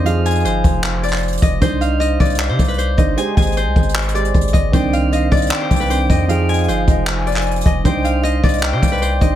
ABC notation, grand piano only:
X:1
M:4/4
L:1/8
Q:1/4=154
K:Cm
V:1 name="Grand piano"
[F,EA]8 | [DEc]6- [DEc] [DEc] | [A,Gc]4- [A,Gc] [A,Gc]3 | [E,CD]6 [E,CD]2 |
[F,EA]8 | [DEc]6- [DEc] [DEc] |]